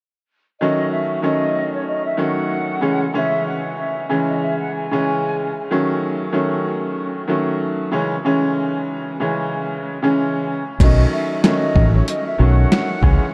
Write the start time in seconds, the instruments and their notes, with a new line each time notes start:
0.60 upright piano D#3 F#3 A3 C#4, flute D#5
0.90 flute E5
1.22 upright piano D#3 F#3 A3 C#4, flute D#5
1.74 flute C#5
1.87 flute D#5
2.05 flute E5
2.17 upright piano D#3 F#3 A3 C#4, flute F#5
2.81 upright piano C#3 E3 G#3 C#4
3.14 upright piano C#3 E3 G#3 C#4, flute E5
3.47 flute F#5
3.76 flute E5
4.09 upright piano C#3 E3 G#3 C#4
4.27 flute D#5
4.41 flute E5
4.58 flute F#5
4.74 flute G#5
4.91 upright piano C#3 E3 G#3 C#4
5.71 upright piano D#3 F#3 A3 C#4
6.32 upright piano D#3 F#3 A3 C#4
7.28 upright piano D#3 F#3 A3 C#4
7.92 upright piano C#3 E3 G#3 C#4
8.24 upright piano C#3 E3 G#3 C#4
9.20 upright piano C#3 E3 G#3 C#4
10.02 upright piano C#3 E3 G#3 C#4
10.80 fingered electric bass B1, upright piano D#3 F#3 A3 C#4, flute D#5, kick, closed hi-hat, crash
11.11 flute E5
11.43 upright piano D#3 F#3 A3 C#4, flute D#5, snare, closed hi-hat
11.76 fingered electric bass A1, kick
11.95 flute C#5
12.08 flute D#5, closed hi-hat
12.26 flute E5
12.38 fingered electric bass B1, upright piano D#3 F#3 A3 C#4, flute F#5
12.72 snare, closed hi-hat
13.02 fingered electric bass C#2, upright piano C#3 E3 G#3 C#4, kick